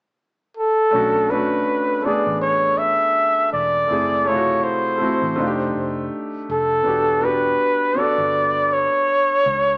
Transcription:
0.57 A4
0.91 B1 A3 C#4 D4
0.95 F#4
1.29 A3 C#4 D4 B4
1.33 F#4
2.02 A3 B3 D4 D5, muted fingered electric bass stroke
2.07 G#4
2.27 A1
2.41 C#5
2.78 E5
3.53 E1 D5
3.87 F#1 A3 C4 E4
3.92 G#4
4.25 C3 A3 E4 C#5
4.30 F4
4.36 F#4
4.64 C5
4.98 A3 C4 E4, muted fingered electric bass stroke
5.03 F#4
5.22 A1
5.36 F1 A3 D4 D#4
5.40 F4
5.47 G4
5.75 F1
6.49 F1 A4
6.83 E1 B3 D4 F#4
6.88 G4
7.20 B3 D4 F#4
7.24 G4 B4
7.94 B3 D4 F#4, muted fingered electric bass stroke
7.99 A4 D5
8.18 G1
8.73 C#5
9.46 C#2

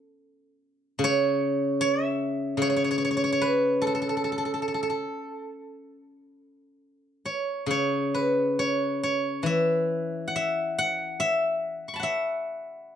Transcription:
Already playing: A4
0.99 C#3
1.04 C#5
1.81 C#5
2.05 E5
2.57 C#3
2.62 C#5
2.70 C#5
2.76 C#5
2.84 C#5
2.91 C#5
2.98 C#5
3.05 C#5
3.11 C#5
3.17 C#5
3.24 C#5
3.32 C#5
3.41 B4
3.82 A4
3.87 A4
3.95 A4
4.02 A4
4.09 A4
4.17 A4
4.24 A4
4.32 A4
4.38 A4
4.45 A4
4.54 A4
4.62 A4
4.68 A4
4.74 A4
4.83 A4
4.90 A4
7.25 C#5
7.66 C#3
7.71 C#5
8.14 B4
8.59 C#5
9.03 C#5
9.43 E3 E5
10.28 F#5
10.36 E5
10.78 F#5
11.20 E5
11.88 C#6
11.94 A5 B5
12.00 E5 F#5

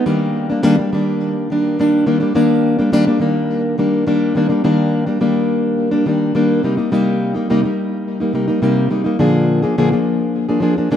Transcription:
0.06 D#3 G3 A#3 D4
0.50 G3 A#3 D4
0.63 D#3 G3 A#3 D4
0.78 G3 D4
0.92 D#3 G3 A#3 D4
1.50 D#3 G3 A#3 D4
1.79 D#3 G3 A#3 D4
2.06 D#3 G3 A#3 D4
2.20 G3 A#3 D4
2.35 D#3 G3 A#3 D4
2.79 G3 A#3 D4
2.92 D#3 G3 A#3 D4
3.07 G3 A#3 D4
3.20 D#3 G3 A#3 D4
3.78 D#3 G3 A#3 D4
4.06 D#3 G3 A#3 D4
4.35 D#3 G3 A#3 D4
4.49 G3 A#3 D4
4.64 D#3 G3 A#3 D4
5.06 G3 A#3 D4
5.21 D#3 G3 A#3 D4
5.91 G3 A#3 D4
6.06 D#3 G3 A#3 D4
6.35 D#3 G3 A#3 D4
6.63 C3 G3 A#3 D#4
6.77 G3 A#3 D#4
6.91 C3 G3 A#3 D#4
7.35 G3 A#3 D#4
7.50 C3 G3 A#3 D#4
7.63 G3 A#3 D#4
8.20 G3 A#3 D#4
8.33 C3 G3 A#3 D#4
8.48 G3 A#3 D#4
8.62 C3 G3 A#3 D#4
8.90 C3 G3 A#3 D#4
9.04 G3 A#3 D#4
9.19 A#2 D3 F3 A#3 D4 G#4
9.62 F3 A#3 D4 G#4
9.78 A#2 D3 F3 A#3 D4 G#4
9.91 F3 A#3 D4 G#4
10.49 F3 A#3 D4 G#4
10.60 F3 A#3 D4 G#4
10.77 F3 A#3 D4 G#4
10.91 A#2 D3 F3 A#3 D4 G#4

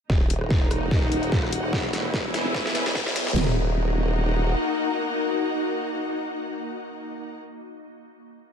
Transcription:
0.10 D#1 A#3 D#4 F#4 D#5, kick, snare, riser
0.30 closed hi-hat
0.35 A#4
0.41 cross-stick
0.50 E1, kick, snare
0.71 cross-stick, closed hi-hat
0.78 F#5
0.91 D#1, kick, snare
1.12 D#1, closed hi-hat
1.23 closed hi-hat
1.32 kick, snare
1.43 cross-stick
1.53 open hi-hat
1.64 cross-stick
1.73 E1 B3 E4 G#4 E5, kick, snare
1.93 snare, closed hi-hat
2.04 B4
2.14 E1, kick, snare
2.33 E1 G#5, snare, closed hi-hat
2.45 E1
2.55 kick, snare
2.66 snare
2.75 snare, closed hi-hat
2.86 snare, closed hi-hat
2.95 kick, snare
3.06 B1, snare
3.16 snare, open hi-hat
3.27 B1, snare
3.36 D#1 A#3 D#4 F#4 D#5, snare, floor tom, crash
3.43 A#4
3.49 F#5

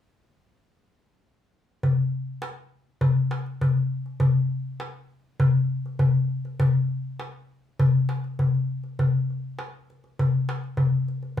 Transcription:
1.83 darbuka dum
2.42 darbuka tek
3.01 darbuka dum
3.31 darbuka tek
3.46 darbuka ka
3.61 darbuka dum
3.77 darbuka ka
4.06 darbuka ka
4.20 darbuka dum
4.80 darbuka tek
5.40 darbuka dum
5.86 darbuka ka
5.99 darbuka dum
6.15 darbuka ka
6.45 darbuka ka
6.60 darbuka dum
7.20 darbuka tek
7.79 darbuka dum
8.09 darbuka tek
8.24 darbuka ka
8.39 darbuka dum
8.54 darbuka ka
8.84 darbuka ka
8.99 darbuka dum
9.30 darbuka ka
9.59 darbuka tek
9.90 darbuka ka
10.04 darbuka ka
10.19 darbuka dum
10.49 darbuka tek
10.64 darbuka ka
10.77 darbuka dum
11.08 darbuka ka
11.23 darbuka ka

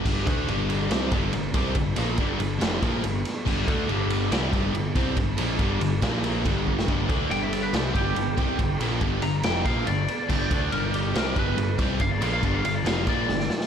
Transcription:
0.05 G1 G2 D3 G3, kick, crash
0.27 D2 D3 A3 D4, kick, ride
0.48 G1 G2 D3 G3, ride
0.70 ride
0.91 C2 C3 G3 C4, snare, ride
1.12 G1 G2 D3 G3, kick, ride
1.33 G1 G2 D3, ride
1.54 C2 C3 G3 C4, kick, ride
1.75 G1 G2 D3, kick, ride
1.96 A#1 A#2 F3 A#3, ride
2.18 G1 G2 D3 G3, kick, ride
2.40 G1 G2 D3, ride
2.61 F1 F2 C3 F3, snare, ride
2.82 A#1 A#2 F3 A#3, kick, ride
3.03 G1 G2 D3, ride
3.25 snare, ride
3.46 G1 G2 D3 G3, kick, crash
3.67 D2 D3 A3 D4, kick, ride
3.88 G1 G2 D3 G3, ride
4.10 ride
4.30 C2 C3 G3 C4, snare, ride
4.52 G1 G2 D3 G3, kick, ride
4.73 G1 G2 D3, ride
4.95 C2 C3 G3 C4, kick, ride
5.16 G1 G2 D3, kick, ride
5.38 A#1 A#2 F3 A#3, ride
5.59 G1 G2 D3 G3, kick, ride
5.81 G1 G2 D3, ride
6.02 A#1 A#2 F3 A#3, kick, snare, ride
6.24 ride
6.45 G1 G2 D3 G3, kick, ride
6.67 kick
6.79 snare
6.87 G1 G2 D3 G3, kick, ride
7.09 D2 D3 A3 D4, kick, ride
7.30 G1 G2 D3 G3 G5, ride
7.43 E5
7.53 D5, ride
7.63 B4
7.73 C2 C3 G3 C4 A4, snare, ride
7.84 G4
7.94 G1 G2 D3 G3 G4, kick, ride
8.16 G1 G2 D3, ride
8.37 C2 C3 G3 C4, kick, ride
8.59 G1 G2 D3, kick, ride
8.79 A#1 A#2 F3 A#3, ride
9.01 G1 G2 D3 G3, kick, ride
9.22 G1 G2 D3 A#5, ride
9.43 F1 F2 C3 F3 G5, snare, ride
9.65 A#1 A#2 F3 A#3 F5, kick, ride
9.86 G1 G2 D3 D5, ride
10.08 ride
10.29 G1 G2 D3 G3, kick, crash
10.50 D2 D3 A3 D4, kick, ride
10.72 G1 G2 D3 G3 A#4, ride
10.94 G4, ride
11.15 C2 C3 G3 C4 A#4, snare, ride
11.36 G1 G2 D3 G3 B4, kick, ride
11.57 G1 G2 D3, ride
11.79 C2 C3 G3 C4, kick, snare, ride
12.00 G1 G2 D3 F5, kick, ride
12.11 D5
12.21 A#1 A#2 F3 A#3 F5, ride
12.33 F5
12.43 G1 G2 D3 G3 D5, kick, ride
12.55 F5
12.64 G1 G2 D3 F5, ride
12.75 D5
12.85 F1 F2 C3 F3 F5, snare, ride
13.07 A#1 A#2 F3 A#3 D5, kick, ride
13.28 G1 G2 D3, snare
13.40 snare
13.50 snare
13.60 snare

